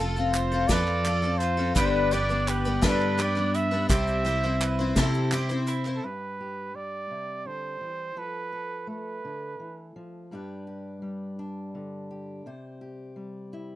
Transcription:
Already playing: F1 F3
0.00 C4 F4 A4
0.16 C4 F4 A4, shaker
0.31 C5, clap, closed hi-hat
0.35 C5
0.52 C4 F4 A4, shaker
0.67 F2 F3 C4 F4 D5, kick, snare, clap, closed hi-hat, shaker
0.71 A4 B4
0.88 clap
1.05 F3 C4 F4 A4, clap, closed hi-hat
1.22 C4 F4 A4, clap
1.38 C5, clap, closed hi-hat
1.43 F4
1.57 C4 F4 A4, clap
1.75 G1 G2 D3 G3 B3 D4 G4 B4, kick, clap, closed hi-hat, shaker
1.85 C5
1.91 B4
2.11 G3 B3 D4 G4 B4 D5, closed hi-hat
2.29 G3 B3 D4 B4, shaker
2.47 G4 B4, clap, closed hi-hat
2.65 G3 B3 D4 B4, shaker
2.81 G2 D3 G3 B3 D4 A4 B4, kick, snare, clap, closed hi-hat, shaker
3.01 clap
3.18 G3 B3 D4 G4 B4, clap, closed hi-hat
3.22 D5
3.35 G3 B3 D4 B4, clap
3.54 E4 E5, clap, closed hi-hat
3.71 G3 B3 D4 B4, clap
3.89 C2 C3 G3 C4 E4 G4 C5 E5, kick, clap, closed hi-hat, shaker
4.08 shaker
4.25 G3 C4 E4 G4 C5, closed hi-hat
4.43 C4 E4 C5, clap
4.61 B4, clap, closed hi-hat, shaker
4.79 C4 E4 C5
4.96 C3 G3 C4 E4 A4 C5, kick, snare, clap, closed hi-hat, shaker
5.14 shaker
5.31 G3 C4 E4 G4 C5, clap, closed hi-hat
5.49 C4 E4 C5, clap, shaker
5.67 E4, clap, closed hi-hat, shaker
5.85 C4 E4 C5, clap, shaker
5.96 A4
6.04 G2 G4 B4
6.41 G4
6.74 G3 D5
7.11 C3
7.45 D3 C5
7.81 E3
8.16 F3 A4 B4
8.52 A4
8.87 A3 B4
9.25 D3
9.60 E3
9.96 F3
10.31 G2 G3 D4 G4 B4
10.67 G4
11.02 G3
11.39 D4
11.75 D3
12.11 G4
12.46 C3 C5
12.81 G4
13.16 G3
13.53 E4

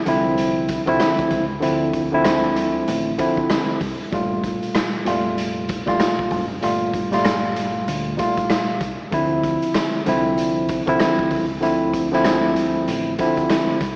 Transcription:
0.06 C2 D3 F3 C4 E4, closed hi-hat
0.38 closed hi-hat
0.68 kick, closed hi-hat
0.86 C2 D3 F3 C4 E4, kick, closed hi-hat
1.00 cross-stick, snare, closed hi-hat
1.19 kick, closed hi-hat
1.31 C#2, kick, closed hi-hat
1.60 D2 D3 F3 C4 E4, closed hi-hat
1.93 kick, closed hi-hat
2.12 D3 F3 C4 E4
2.25 cross-stick, snare, closed hi-hat
2.56 closed hi-hat
2.88 A1, closed hi-hat
3.18 D3 F3 C4 E4, kick, closed hi-hat
3.37 kick
3.50 cross-stick, snare, closed hi-hat
3.81 C2, kick, open hi-hat
4.11 G1 A#2 G3 A3 F4, kick, closed hi-hat
4.44 kick, closed hi-hat
4.62 closed hi-hat
4.75 cross-stick, snare, closed hi-hat
5.05 F1 A#2 G3 A3 F4, closed hi-hat
5.38 closed hi-hat
5.69 kick, closed hi-hat
5.85 F1 A#2 G3 A3 F4, kick, snare
6.00 cross-stick, snare, closed hi-hat
6.19 kick
6.31 F#1, kick, open hi-hat
6.61 G1 A#2 G3 A3 F4, closed hi-hat
6.94 kick, closed hi-hat
7.11 A#2 G3 A3 F4, snare, closed hi-hat
7.25 cross-stick, snare, closed hi-hat
7.56 closed hi-hat
7.88 D2, closed hi-hat
8.17 A#2 G3 A3 F4, kick, closed hi-hat
8.37 kick, closed hi-hat
8.50 cross-stick, snare, closed hi-hat
8.81 C2, kick, closed hi-hat
9.11 D2 D3 F3 C4 E4, kick, closed hi-hat
9.44 kick, closed hi-hat
9.62 closed hi-hat
9.74 cross-stick, snare, closed hi-hat
10.06 C2 D3 F3 C4 E4, closed hi-hat
10.38 closed hi-hat
10.69 kick, closed hi-hat
10.86 C2 D3 F3 C4 E4, kick, closed hi-hat
11.00 cross-stick, snare, closed hi-hat
11.19 kick
11.31 C#2, kick, open hi-hat
11.60 D2 D3 F3 C4 E4, closed hi-hat
11.93 kick, closed hi-hat
12.12 D3 F3 C4 E4, snare
12.24 cross-stick, snare, closed hi-hat
12.56 closed hi-hat
12.88 A1, closed hi-hat
13.18 D3 F3 C4 E4, kick, closed hi-hat
13.37 kick, closed hi-hat
13.49 cross-stick, snare, closed hi-hat
13.81 C2, kick, closed hi-hat

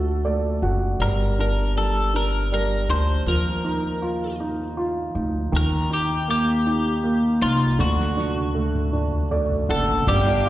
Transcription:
Already playing: D2 D3 A3 F#4 A4
0.25 A3 D5
0.62 F#1 F#4 F#5
1.00 G1 G3 A#4
1.39 D4 A#4
1.76 G3 A4
2.14 D4 A#4
2.52 G3 A#4
2.89 D2 D4 C5
3.26 D#2 F3 A#4
3.64 D#4
4.02 F4
4.40 D#4
4.77 F4
5.15 D2 D#4
5.52 D#2 D#3
5.57 A#4
5.90 D#4 G4
6.28 A#3 G4
6.66 D#4
7.04 A#3
7.42 C2 D#4 F4
7.79 D2 D3 F#4, snare
8.00 snare
8.17 D4, snare
8.36 high tom
8.55 A3, high tom
8.74 mid tom
8.93 D4, mid tom
9.12 mid tom
9.31 A3 D5, mid tom
9.50 floor tom
9.69 F#1 D4 A4 F#5, floor tom
9.88 floor tom
10.07 G1 G3 G4 A#4 F5 G5 D6, kick, crash
10.26 D4
10.45 F4, ride

